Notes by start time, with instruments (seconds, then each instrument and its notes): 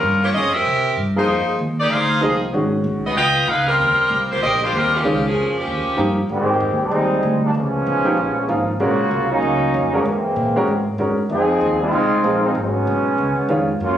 Already playing: saxophone section G3 C#4 F4 A#4
0.03 upright bass G2
0.23 saxophone section A#3 F4 G4 C#5
0.34 upright bass F2, saxophone section C#4 F4 G#4 D#5
0.53 saxophone section C4 G4 A#4 E5
0.66 upright bass C3
0.97 upright bass G2
1.16 grand piano F3 A#3 D#4 G#4, saxophone section G#3 D#4 F4 C5
1.28 upright bass F2
1.59 upright bass D#2
1.80 saxophone section A#3 D#4 G4 D5
1.91 upright bass D2, saxophone section D#4 G#4 C5 F5
2.21 upright bass C2, grand piano F3 A#3 D#4 G#4, saxophone section C4 F4 G#4 D#5
2.53 upright bass G#1, grand piano D#3 G#3 C#4 F#4
2.84 upright bass B1
3.06 saxophone section B3 F#4 G#4 D#5
3.16 upright bass C#2, saxophone section F4 B4 D#5 G5
3.47 upright bass C#2, saxophone section D#4 G#4 B4 F5
3.68 saxophone section G3 C4 F4 A#4
3.79 upright bass D#2
4.10 upright bass C2
4.31 saxophone section A#3 F4 G4 C5
4.41 upright bass A#1, saxophone section C4 G4 A#4 D#5
4.64 saxophone section A#3 F4 G4 C5
4.73 upright bass D#2, saxophone section F4
4.77 saxophone section G3 C4 A#4
4.96 saxophone section F3 A#3 C#4 G4
5.03 upright bass C#2, grand piano D#3 G#3 C#4 F4
5.27 saxophone section F3 A#3 C#4 G#4
5.35 upright bass F2
5.58 saxophone section F3 A#3 C#4 G4
5.67 upright bass D#2
5.86 muted upright bass stroke
5.97 upright bass G2, grand piano F3 A#3 D#4 G4
6.29 upright bass G#2, trombone section D#3 G#3 C4 G4
6.60 upright bass F2
6.70 upright bass D#2
6.81 upright bass C2, trombone section G3 G#3 C4 D#4
6.91 upright bass D#2
7.23 upright bass D2
7.44 trombone section D#3 G3 A#3 D4
7.54 upright bass C#2, trombone section F3 G#3 B3 C#4
7.86 upright bass B1
8.05 grand piano F3 A#3 D#4 G4
8.17 upright bass A#1
8.48 upright bass G#1, grand piano F3 A#3 D#4 F4
8.79 upright bass A#1, trombone section C#3 A#3 F4 F#4, grand piano G#3 C#4 F#4 A#4
9.11 upright bass C2
9.30 trombone section F#3 A#3 C#4 D#4
9.42 upright bass C#2
9.74 upright bass F2
9.93 trombone section F3 F#3 A#3 C#4, grand piano G#3 C#4 F#4 A#4
10.05 upright bass F#2, trombone section E3 G#3 A#3 C4
10.36 upright bass A#2
10.56 grand piano G#3 C#4 F#4 A#4
10.68 upright bass G#2
10.98 upright bass F#2, grand piano G#3 C#4 F#4 A#4
11.19 muted upright bass stroke
11.29 upright bass F2, trombone section F3 C4 D#4 G#4
11.61 upright bass D#2
11.80 trombone section G#3 C4 D#4 F4
11.93 upright bass C2
12.13 muted upright bass stroke
12.23 upright bass A#1, grand piano F3 A#3 D#4 G#4
12.44 trombone section F3 G#3 C4 D#4
12.55 upright bass G#1, trombone section F#3 G#3 B3 C#4
12.87 upright bass B1
13.18 upright bass C#2
13.38 muted upright bass stroke
13.49 upright bass F2, grand piano D#3 G#3 C#4 F4
13.80 upright bass F#2, trombone section F#3 A#3 C#4 F4